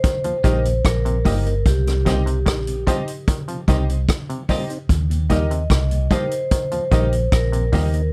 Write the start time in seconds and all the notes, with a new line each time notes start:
Already playing: C5
0.04 D#3, kick, closed hi-hat
0.24 D#2 A#2 F3, muted clean electric guitar stroke, closed hi-hat
0.44 A#1 D#3 G3 A#3 D#4 G4 A#4 D#5, kick, closed hi-hat
0.64 D#2 A#2, closed hi-hat
0.85 A#1 A#4, kick, cross-stick, closed hi-hat
1.05 D#2 A#2 C3, closed hi-hat
1.25 G1 A#2 G3 A#3 D#4 G4 A#4 D#5, kick, open hi-hat
1.46 A#3 D#4, closed hi-hat
1.66 C2 G4, kick, closed hi-hat
1.87 C3, cross-stick, closed hi-hat
2.05 A#2 G3 C4 D#4 G4 C5 D#5, kick, cross-stick, closed hi-hat
2.26 C3, closed hi-hat
2.46 A#1 D#3, kick, cross-stick, closed hi-hat
2.67 C3, closed hi-hat
2.87 F3 G3 C4 D#4 G4 C5 D#5, kick, closed hi-hat
3.08 closed hi-hat
3.28 D#3, kick, closed hi-hat
3.48 C3 F3, closed hi-hat
3.68 C2 D#3 G3 C4 D#4 G4 C5 D#5, kick, closed hi-hat
3.89 C3 C5 D#5, closed hi-hat
4.09 kick, cross-stick, closed hi-hat
4.29 C3, closed hi-hat
4.49 A#2 G3 C4 D#4 G4 C5 D#5, kick, open hi-hat
4.70 C4 D#4, closed hi-hat
4.89 D#2, kick, closed hi-hat
5.10 D#2 A#2, closed hi-hat
5.30 A#2 G3 A#3 D#4 G4 A#4 D#5, kick, closed hi-hat
5.51 C3, closed hi-hat
5.70 C2 D#3, kick, cross-stick, closed hi-hat
5.91 D#2 A#2, closed hi-hat
6.11 F3 G3 A#3 D#4 G4 A#4 C5 D#5, kick, closed hi-hat
6.31 closed hi-hat
6.51 D#3, kick, closed hi-hat
6.72 D#2 A#2 F3, muted clean electric guitar stroke, closed hi-hat
6.91 A#1 D#3 G3 A#3 D#4 G4 A#4 D#5, kick, closed hi-hat
7.13 D#2 A#2, closed hi-hat
7.32 A#1 A#4, kick, cross-stick, closed hi-hat
7.52 D#2 A#2 C3, closed hi-hat
7.72 D#2 A#2 G3 A#3 D#4 G4 A#4 D#5, kick, open hi-hat
7.93 A#3 D#4, closed hi-hat